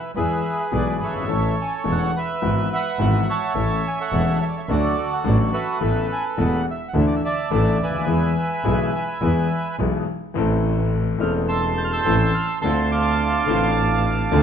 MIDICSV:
0, 0, Header, 1, 4, 480
1, 0, Start_track
1, 0, Tempo, 566572
1, 1089, Time_signature, 4, 2, 24, 8
1, 12223, End_track
2, 0, Start_track
2, 0, Title_t, "Bandoneon"
2, 0, Program_c, 0, 23
2, 0, Note_on_c, 0, 71, 65
2, 0, Note_on_c, 0, 76, 66
2, 96, Note_off_c, 0, 71, 0
2, 96, Note_off_c, 0, 76, 0
2, 136, Note_on_c, 0, 71, 63
2, 139, Note_on_c, 0, 68, 61
2, 151, Note_on_c, 0, 76, 84
2, 496, Note_off_c, 0, 76, 0
2, 509, Note_on_c, 0, 76, 70
2, 558, Note_off_c, 0, 76, 0
2, 634, Note_on_c, 0, 74, 71
2, 846, Note_off_c, 0, 74, 0
2, 868, Note_on_c, 0, 73, 57
2, 871, Note_on_c, 0, 69, 58
2, 888, Note_on_c, 0, 76, 69
2, 1061, Note_off_c, 0, 71, 0
2, 1063, Note_off_c, 0, 68, 0
2, 1318, Note_off_c, 0, 76, 0
2, 1368, Note_on_c, 0, 80, 76
2, 1468, Note_off_c, 0, 80, 0
2, 1624, Note_on_c, 0, 78, 85
2, 1787, Note_off_c, 0, 73, 0
2, 1789, Note_off_c, 0, 69, 0
2, 1832, Note_on_c, 0, 71, 61
2, 1844, Note_off_c, 0, 78, 0
2, 1849, Note_on_c, 0, 76, 85
2, 2278, Note_off_c, 0, 76, 0
2, 2313, Note_on_c, 0, 76, 60
2, 2315, Note_on_c, 0, 78, 63
2, 2329, Note_on_c, 0, 83, 88
2, 2748, Note_off_c, 0, 71, 0
2, 2758, Note_off_c, 0, 83, 0
2, 2777, Note_off_c, 0, 76, 0
2, 2790, Note_on_c, 0, 76, 63
2, 2791, Note_on_c, 0, 73, 62
2, 2802, Note_on_c, 0, 81, 79
2, 2990, Note_off_c, 0, 78, 0
2, 3281, Note_off_c, 0, 81, 0
2, 3284, Note_on_c, 0, 80, 80
2, 3381, Note_off_c, 0, 80, 0
2, 3382, Note_off_c, 0, 73, 0
2, 3393, Note_on_c, 0, 69, 57
2, 3394, Note_on_c, 0, 73, 61
2, 3399, Note_on_c, 0, 78, 82
2, 3706, Note_off_c, 0, 76, 0
2, 3721, Note_off_c, 0, 78, 0
2, 3745, Note_on_c, 0, 76, 74
2, 3769, Note_off_c, 0, 76, 0
2, 3801, Note_on_c, 0, 74, 58
2, 3855, Note_off_c, 0, 74, 0
2, 3879, Note_on_c, 0, 76, 75
2, 3947, Note_off_c, 0, 69, 0
2, 3948, Note_off_c, 0, 73, 0
2, 3975, Note_on_c, 0, 69, 61
2, 3978, Note_off_c, 0, 76, 0
2, 3980, Note_on_c, 0, 66, 60
2, 3991, Note_on_c, 0, 74, 80
2, 4346, Note_on_c, 0, 78, 73
2, 4350, Note_off_c, 0, 74, 0
2, 4396, Note_off_c, 0, 78, 0
2, 4462, Note_on_c, 0, 74, 71
2, 4567, Note_off_c, 0, 74, 0
2, 4667, Note_off_c, 0, 69, 0
2, 4679, Note_on_c, 0, 69, 58
2, 4680, Note_on_c, 0, 71, 63
2, 4693, Note_on_c, 0, 76, 79
2, 4899, Note_off_c, 0, 66, 0
2, 5136, Note_off_c, 0, 76, 0
2, 5190, Note_on_c, 0, 80, 79
2, 5293, Note_off_c, 0, 80, 0
2, 5428, Note_on_c, 0, 78, 84
2, 5609, Note_off_c, 0, 69, 0
2, 5609, Note_off_c, 0, 71, 0
2, 5642, Note_off_c, 0, 78, 0
2, 5683, Note_on_c, 0, 76, 81
2, 5830, Note_on_c, 0, 78, 65
2, 5841, Note_off_c, 0, 76, 0
2, 5901, Note_off_c, 0, 78, 0
2, 5905, Note_on_c, 0, 76, 73
2, 5977, Note_off_c, 0, 76, 0
2, 5987, Note_on_c, 0, 74, 75
2, 6057, Note_off_c, 0, 74, 0
2, 6066, Note_on_c, 0, 76, 70
2, 6125, Note_off_c, 0, 76, 0
2, 6137, Note_on_c, 0, 76, 60
2, 6139, Note_on_c, 0, 74, 63
2, 6150, Note_on_c, 0, 81, 84
2, 6586, Note_off_c, 0, 81, 0
2, 6618, Note_off_c, 0, 76, 0
2, 6631, Note_on_c, 0, 76, 57
2, 6632, Note_on_c, 0, 71, 62
2, 6642, Note_on_c, 0, 80, 76
2, 6819, Note_off_c, 0, 74, 0
2, 8268, Note_off_c, 0, 76, 0
2, 8269, Note_off_c, 0, 71, 0
2, 8274, Note_off_c, 0, 80, 0
2, 9494, Note_on_c, 0, 89, 90
2, 9602, Note_off_c, 0, 89, 0
2, 9730, Note_on_c, 0, 88, 99
2, 9732, Note_on_c, 0, 81, 75
2, 9732, Note_on_c, 0, 84, 71
2, 9838, Note_off_c, 0, 88, 0
2, 9978, Note_on_c, 0, 91, 108
2, 10031, Note_off_c, 0, 91, 0
2, 10036, Note_on_c, 0, 89, 85
2, 10093, Note_off_c, 0, 89, 0
2, 10097, Note_off_c, 0, 84, 0
2, 10103, Note_on_c, 0, 91, 100
2, 10109, Note_on_c, 0, 84, 72
2, 10110, Note_on_c, 0, 88, 79
2, 10434, Note_off_c, 0, 91, 0
2, 10457, Note_on_c, 0, 89, 92
2, 10564, Note_off_c, 0, 89, 0
2, 10658, Note_off_c, 0, 81, 0
2, 10668, Note_off_c, 0, 84, 0
2, 10668, Note_off_c, 0, 88, 0
2, 10681, Note_on_c, 0, 88, 96
2, 10689, Note_on_c, 0, 84, 71
2, 10691, Note_on_c, 0, 81, 70
2, 10792, Note_off_c, 0, 88, 0
2, 10934, Note_off_c, 0, 81, 0
2, 10945, Note_on_c, 0, 86, 90
2, 10947, Note_on_c, 0, 81, 65
2, 10950, Note_on_c, 0, 77, 65
2, 11614, Note_off_c, 0, 84, 0
2, 12223, Note_off_c, 0, 77, 0
2, 12223, Note_off_c, 0, 81, 0
2, 12223, Note_off_c, 0, 86, 0
2, 12223, End_track
3, 0, Start_track
3, 0, Title_t, "Grand piano"
3, 0, Program_c, 1, 0
3, 138, Note_on_c, 1, 52, 65
3, 139, Note_on_c, 1, 59, 54
3, 140, Note_on_c, 1, 56, 55
3, 143, Note_on_c, 1, 68, 63
3, 145, Note_on_c, 1, 40, 64
3, 335, Note_off_c, 1, 52, 0
3, 335, Note_off_c, 1, 56, 0
3, 335, Note_off_c, 1, 59, 0
3, 337, Note_off_c, 1, 40, 0
3, 337, Note_off_c, 1, 68, 0
3, 606, Note_on_c, 1, 52, 59
3, 609, Note_on_c, 1, 68, 68
3, 610, Note_on_c, 1, 35, 65
3, 610, Note_on_c, 1, 59, 54
3, 611, Note_on_c, 1, 47, 72
3, 612, Note_on_c, 1, 56, 57
3, 810, Note_off_c, 1, 52, 0
3, 811, Note_off_c, 1, 35, 0
3, 811, Note_off_c, 1, 59, 0
3, 811, Note_off_c, 1, 68, 0
3, 812, Note_off_c, 1, 47, 0
3, 813, Note_off_c, 1, 56, 0
3, 927, Note_on_c, 1, 30, 42
3, 976, Note_on_c, 1, 31, 51
3, 978, Note_off_c, 1, 30, 0
3, 1033, Note_off_c, 1, 31, 0
3, 1038, Note_on_c, 1, 32, 59
3, 1082, Note_on_c, 1, 57, 53
3, 1084, Note_on_c, 1, 52, 60
3, 1084, Note_on_c, 1, 61, 56
3, 1085, Note_on_c, 1, 45, 67
3, 1088, Note_on_c, 1, 33, 66
3, 1090, Note_on_c, 1, 69, 69
3, 1094, Note_off_c, 1, 32, 0
3, 1288, Note_off_c, 1, 57, 0
3, 1289, Note_off_c, 1, 45, 0
3, 1289, Note_off_c, 1, 52, 0
3, 1289, Note_off_c, 1, 61, 0
3, 1291, Note_off_c, 1, 33, 0
3, 1292, Note_off_c, 1, 69, 0
3, 1558, Note_on_c, 1, 40, 73
3, 1559, Note_on_c, 1, 52, 63
3, 1559, Note_on_c, 1, 57, 56
3, 1561, Note_on_c, 1, 28, 76
3, 1562, Note_on_c, 1, 61, 57
3, 1562, Note_on_c, 1, 69, 70
3, 1766, Note_off_c, 1, 40, 0
3, 1767, Note_off_c, 1, 52, 0
3, 1767, Note_off_c, 1, 57, 0
3, 1768, Note_off_c, 1, 28, 0
3, 1768, Note_off_c, 1, 61, 0
3, 1769, Note_off_c, 1, 69, 0
3, 2048, Note_on_c, 1, 56, 54
3, 2049, Note_on_c, 1, 44, 70
3, 2050, Note_on_c, 1, 52, 59
3, 2053, Note_on_c, 1, 32, 65
3, 2053, Note_on_c, 1, 59, 59
3, 2056, Note_on_c, 1, 66, 64
3, 2252, Note_off_c, 1, 44, 0
3, 2252, Note_off_c, 1, 56, 0
3, 2253, Note_off_c, 1, 52, 0
3, 2254, Note_off_c, 1, 32, 0
3, 2254, Note_off_c, 1, 59, 0
3, 2256, Note_off_c, 1, 66, 0
3, 2531, Note_on_c, 1, 52, 61
3, 2533, Note_on_c, 1, 56, 63
3, 2535, Note_on_c, 1, 44, 72
3, 2538, Note_on_c, 1, 32, 77
3, 2539, Note_on_c, 1, 59, 61
3, 2540, Note_on_c, 1, 66, 73
3, 2733, Note_off_c, 1, 52, 0
3, 2734, Note_off_c, 1, 56, 0
3, 2735, Note_off_c, 1, 44, 0
3, 2737, Note_off_c, 1, 32, 0
3, 2737, Note_off_c, 1, 59, 0
3, 2738, Note_off_c, 1, 66, 0
3, 3008, Note_on_c, 1, 52, 66
3, 3008, Note_on_c, 1, 57, 59
3, 3008, Note_on_c, 1, 61, 55
3, 3010, Note_on_c, 1, 69, 70
3, 3011, Note_on_c, 1, 45, 71
3, 3013, Note_on_c, 1, 33, 70
3, 3211, Note_off_c, 1, 61, 0
3, 3212, Note_off_c, 1, 52, 0
3, 3212, Note_off_c, 1, 57, 0
3, 3213, Note_off_c, 1, 45, 0
3, 3213, Note_off_c, 1, 69, 0
3, 3214, Note_off_c, 1, 33, 0
3, 3490, Note_on_c, 1, 52, 64
3, 3493, Note_on_c, 1, 40, 76
3, 3496, Note_on_c, 1, 61, 59
3, 3496, Note_on_c, 1, 69, 68
3, 3497, Note_on_c, 1, 28, 78
3, 3498, Note_on_c, 1, 57, 62
3, 3692, Note_off_c, 1, 52, 0
3, 3694, Note_off_c, 1, 40, 0
3, 3695, Note_off_c, 1, 61, 0
3, 3695, Note_off_c, 1, 69, 0
3, 3696, Note_off_c, 1, 28, 0
3, 3696, Note_off_c, 1, 57, 0
3, 3976, Note_on_c, 1, 69, 74
3, 3977, Note_on_c, 1, 50, 77
3, 3977, Note_on_c, 1, 62, 58
3, 3979, Note_on_c, 1, 54, 67
3, 3979, Note_on_c, 1, 57, 58
3, 3981, Note_on_c, 1, 38, 74
3, 4174, Note_off_c, 1, 62, 0
3, 4174, Note_off_c, 1, 69, 0
3, 4175, Note_off_c, 1, 50, 0
3, 4176, Note_off_c, 1, 54, 0
3, 4176, Note_off_c, 1, 57, 0
3, 4177, Note_off_c, 1, 38, 0
3, 4437, Note_on_c, 1, 54, 67
3, 4441, Note_on_c, 1, 45, 77
3, 4442, Note_on_c, 1, 62, 60
3, 4443, Note_on_c, 1, 33, 76
3, 4444, Note_on_c, 1, 57, 62
3, 4446, Note_on_c, 1, 69, 73
3, 4644, Note_off_c, 1, 54, 0
3, 4646, Note_off_c, 1, 45, 0
3, 4646, Note_off_c, 1, 62, 0
3, 4647, Note_off_c, 1, 33, 0
3, 4647, Note_off_c, 1, 57, 0
3, 4648, Note_off_c, 1, 69, 0
3, 4918, Note_on_c, 1, 57, 60
3, 4920, Note_on_c, 1, 52, 66
3, 4922, Note_on_c, 1, 45, 74
3, 4923, Note_on_c, 1, 33, 73
3, 4925, Note_on_c, 1, 59, 60
3, 4926, Note_on_c, 1, 69, 73
3, 5124, Note_off_c, 1, 57, 0
3, 5125, Note_off_c, 1, 52, 0
3, 5126, Note_off_c, 1, 45, 0
3, 5127, Note_off_c, 1, 33, 0
3, 5128, Note_off_c, 1, 59, 0
3, 5128, Note_off_c, 1, 69, 0
3, 5401, Note_on_c, 1, 57, 59
3, 5402, Note_on_c, 1, 28, 76
3, 5403, Note_on_c, 1, 52, 67
3, 5404, Note_on_c, 1, 40, 81
3, 5407, Note_on_c, 1, 59, 67
3, 5407, Note_on_c, 1, 69, 69
3, 5605, Note_off_c, 1, 57, 0
3, 5606, Note_off_c, 1, 28, 0
3, 5607, Note_off_c, 1, 40, 0
3, 5607, Note_off_c, 1, 52, 0
3, 5609, Note_off_c, 1, 59, 0
3, 5609, Note_off_c, 1, 69, 0
3, 5877, Note_on_c, 1, 52, 60
3, 5878, Note_on_c, 1, 62, 60
3, 5880, Note_on_c, 1, 38, 73
3, 5881, Note_on_c, 1, 50, 77
3, 5881, Note_on_c, 1, 57, 62
3, 5882, Note_on_c, 1, 69, 72
3, 6084, Note_off_c, 1, 52, 0
3, 6084, Note_off_c, 1, 62, 0
3, 6085, Note_off_c, 1, 38, 0
3, 6085, Note_off_c, 1, 57, 0
3, 6086, Note_off_c, 1, 50, 0
3, 6086, Note_off_c, 1, 69, 0
3, 6363, Note_on_c, 1, 52, 69
3, 6366, Note_on_c, 1, 45, 82
3, 6366, Note_on_c, 1, 57, 63
3, 6368, Note_on_c, 1, 33, 79
3, 6371, Note_on_c, 1, 69, 77
3, 6373, Note_on_c, 1, 62, 60
3, 6567, Note_off_c, 1, 52, 0
3, 6568, Note_off_c, 1, 45, 0
3, 6568, Note_off_c, 1, 57, 0
3, 6569, Note_off_c, 1, 33, 0
3, 6570, Note_off_c, 1, 69, 0
3, 6572, Note_off_c, 1, 62, 0
3, 6673, Note_on_c, 1, 37, 46
3, 6728, Note_on_c, 1, 38, 56
3, 6730, Note_off_c, 1, 37, 0
3, 6779, Note_on_c, 1, 39, 64
3, 6787, Note_off_c, 1, 38, 0
3, 6830, Note_on_c, 1, 40, 76
3, 6832, Note_on_c, 1, 52, 79
3, 6835, Note_on_c, 1, 56, 57
3, 6836, Note_on_c, 1, 68, 74
3, 6838, Note_on_c, 1, 59, 57
3, 6843, Note_off_c, 1, 39, 0
3, 7040, Note_off_c, 1, 40, 0
3, 7042, Note_off_c, 1, 52, 0
3, 7042, Note_off_c, 1, 56, 0
3, 7043, Note_off_c, 1, 68, 0
3, 7044, Note_off_c, 1, 59, 0
3, 7323, Note_on_c, 1, 56, 60
3, 7325, Note_on_c, 1, 52, 68
3, 7325, Note_on_c, 1, 59, 57
3, 7326, Note_on_c, 1, 47, 77
3, 7327, Note_on_c, 1, 68, 77
3, 7329, Note_on_c, 1, 35, 71
3, 7527, Note_off_c, 1, 52, 0
3, 7527, Note_off_c, 1, 56, 0
3, 7527, Note_off_c, 1, 59, 0
3, 7528, Note_off_c, 1, 47, 0
3, 7528, Note_off_c, 1, 68, 0
3, 7529, Note_off_c, 1, 35, 0
3, 7806, Note_on_c, 1, 52, 71
3, 7806, Note_on_c, 1, 68, 65
3, 7808, Note_on_c, 1, 40, 75
3, 7809, Note_on_c, 1, 56, 53
3, 7809, Note_on_c, 1, 59, 57
3, 8009, Note_off_c, 1, 68, 0
3, 8010, Note_off_c, 1, 40, 0
3, 8010, Note_off_c, 1, 52, 0
3, 8010, Note_off_c, 1, 56, 0
3, 8011, Note_off_c, 1, 59, 0
3, 8294, Note_on_c, 1, 47, 75
3, 8295, Note_on_c, 1, 56, 60
3, 8297, Note_on_c, 1, 52, 59
3, 8299, Note_on_c, 1, 35, 74
3, 8300, Note_on_c, 1, 68, 64
3, 8302, Note_on_c, 1, 59, 59
3, 8495, Note_off_c, 1, 47, 0
3, 8495, Note_off_c, 1, 56, 0
3, 8496, Note_off_c, 1, 52, 0
3, 8497, Note_off_c, 1, 35, 0
3, 8498, Note_off_c, 1, 68, 0
3, 8499, Note_off_c, 1, 59, 0
3, 8760, Note_on_c, 1, 52, 73
3, 8771, Note_on_c, 1, 57, 62
3, 8772, Note_on_c, 1, 33, 81
3, 8774, Note_on_c, 1, 45, 85
3, 8782, Note_on_c, 1, 60, 64
3, 8792, Note_on_c, 1, 69, 81
3, 9451, Note_off_c, 1, 52, 0
3, 9456, Note_off_c, 1, 57, 0
3, 9457, Note_off_c, 1, 33, 0
3, 9458, Note_off_c, 1, 45, 0
3, 9462, Note_off_c, 1, 60, 0
3, 9467, Note_off_c, 1, 69, 0
3, 9476, Note_on_c, 1, 52, 64
3, 9486, Note_on_c, 1, 57, 62
3, 9490, Note_on_c, 1, 40, 78
3, 9492, Note_on_c, 1, 28, 83
3, 9495, Note_on_c, 1, 60, 64
3, 9508, Note_on_c, 1, 69, 73
3, 10168, Note_off_c, 1, 52, 0
3, 10173, Note_off_c, 1, 57, 0
3, 10175, Note_off_c, 1, 40, 0
3, 10176, Note_off_c, 1, 28, 0
3, 10178, Note_off_c, 1, 60, 0
3, 10184, Note_off_c, 1, 69, 0
3, 10208, Note_on_c, 1, 57, 72
3, 10210, Note_on_c, 1, 52, 75
3, 10214, Note_on_c, 1, 33, 82
3, 10215, Note_on_c, 1, 45, 84
3, 10215, Note_on_c, 1, 60, 65
3, 10215, Note_on_c, 1, 69, 81
3, 10412, Note_off_c, 1, 57, 0
3, 10413, Note_off_c, 1, 52, 0
3, 10415, Note_off_c, 1, 33, 0
3, 10416, Note_off_c, 1, 45, 0
3, 10416, Note_off_c, 1, 60, 0
3, 10416, Note_off_c, 1, 69, 0
3, 10688, Note_on_c, 1, 50, 72
3, 10699, Note_on_c, 1, 57, 65
3, 10700, Note_off_c, 1, 50, 0
3, 10705, Note_on_c, 1, 50, 85
3, 10711, Note_on_c, 1, 38, 84
3, 10716, Note_on_c, 1, 60, 66
3, 10723, Note_on_c, 1, 65, 76
3, 11377, Note_off_c, 1, 57, 0
3, 11380, Note_off_c, 1, 50, 0
3, 11383, Note_off_c, 1, 38, 0
3, 11386, Note_off_c, 1, 60, 0
3, 11389, Note_off_c, 1, 65, 0
3, 11401, Note_on_c, 1, 50, 66
3, 11410, Note_on_c, 1, 57, 69
3, 11416, Note_on_c, 1, 33, 86
3, 11417, Note_on_c, 1, 45, 87
3, 11422, Note_on_c, 1, 60, 64
3, 11433, Note_on_c, 1, 65, 78
3, 12086, Note_off_c, 1, 50, 0
3, 12091, Note_off_c, 1, 57, 0
3, 12094, Note_off_c, 1, 33, 0
3, 12095, Note_off_c, 1, 45, 0
3, 12097, Note_off_c, 1, 60, 0
3, 12103, Note_off_c, 1, 65, 0
3, 12127, Note_on_c, 1, 50, 89
3, 12128, Note_on_c, 1, 57, 64
3, 12129, Note_on_c, 1, 38, 86
3, 12130, Note_on_c, 1, 60, 72
3, 12135, Note_on_c, 1, 65, 83
3, 12223, Note_off_c, 1, 38, 0
3, 12223, Note_off_c, 1, 50, 0
3, 12223, Note_off_c, 1, 57, 0
3, 12223, Note_off_c, 1, 60, 0
3, 12223, Note_off_c, 1, 65, 0
3, 12223, End_track
4, 0, Start_track
4, 0, Title_t, "Double bass"
4, 0, Program_c, 2, 43
4, 127, Note_on_c, 2, 40, 79
4, 328, Note_off_c, 2, 40, 0
4, 614, Note_on_c, 2, 35, 82
4, 813, Note_off_c, 2, 35, 0
4, 854, Note_on_c, 2, 31, 47
4, 1092, Note_off_c, 2, 31, 0
4, 1098, Note_on_c, 2, 33, 77
4, 1296, Note_off_c, 2, 33, 0
4, 1579, Note_on_c, 2, 28, 79
4, 1777, Note_off_c, 2, 28, 0
4, 2054, Note_on_c, 2, 32, 80
4, 2255, Note_off_c, 2, 32, 0
4, 2526, Note_on_c, 2, 32, 92
4, 2731, Note_off_c, 2, 32, 0
4, 3006, Note_on_c, 2, 33, 82
4, 3211, Note_off_c, 2, 33, 0
4, 3491, Note_on_c, 2, 28, 86
4, 3693, Note_off_c, 2, 28, 0
4, 3967, Note_on_c, 2, 38, 90
4, 4169, Note_off_c, 2, 38, 0
4, 4446, Note_on_c, 2, 33, 97
4, 4648, Note_off_c, 2, 33, 0
4, 4926, Note_on_c, 2, 33, 80
4, 5128, Note_off_c, 2, 33, 0
4, 5408, Note_on_c, 2, 28, 83
4, 5609, Note_off_c, 2, 28, 0
4, 5876, Note_on_c, 2, 38, 90
4, 6083, Note_off_c, 2, 38, 0
4, 6361, Note_on_c, 2, 33, 92
4, 6565, Note_off_c, 2, 33, 0
4, 6600, Note_on_c, 2, 38, 54
4, 6827, Note_off_c, 2, 38, 0
4, 6833, Note_on_c, 2, 40, 80
4, 7041, Note_off_c, 2, 40, 0
4, 7319, Note_on_c, 2, 35, 86
4, 7524, Note_off_c, 2, 35, 0
4, 7800, Note_on_c, 2, 40, 83
4, 8006, Note_off_c, 2, 40, 0
4, 8290, Note_on_c, 2, 35, 89
4, 8493, Note_off_c, 2, 35, 0
4, 8768, Note_on_c, 2, 33, 95
4, 9455, Note_off_c, 2, 33, 0
4, 9487, Note_on_c, 2, 28, 95
4, 10174, Note_off_c, 2, 28, 0
4, 10209, Note_on_c, 2, 33, 97
4, 10413, Note_off_c, 2, 33, 0
4, 10689, Note_on_c, 2, 38, 97
4, 11372, Note_off_c, 2, 38, 0
4, 11411, Note_on_c, 2, 33, 104
4, 12091, Note_off_c, 2, 33, 0
4, 12131, Note_on_c, 2, 38, 110
4, 12223, Note_off_c, 2, 38, 0
4, 12223, End_track
0, 0, End_of_file